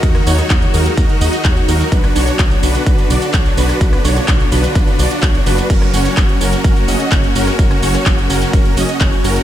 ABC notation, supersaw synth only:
X:1
M:4/4
L:1/8
Q:1/4=127
K:F#
V:1 name="Supersaw synth"
[DFA] [DFc] [DF] [DFA] [DFA] [DFd] [DFc] [DFA] | [=DFB] [DFc] [DFc] [DFB] [DFB] [DF=d] [DFc] [DFB] | [=DFB] [DFc] [DFc] [DFB] [DFB] [DF=d] [DFc] [DFB] | [CFA] [CFc] z [CFA] [CFA] [CFd] [CFc] [CFA] |
C [CFc] [CFc] [CFA] [CFA] [CFd] [CFc] [CFA] |]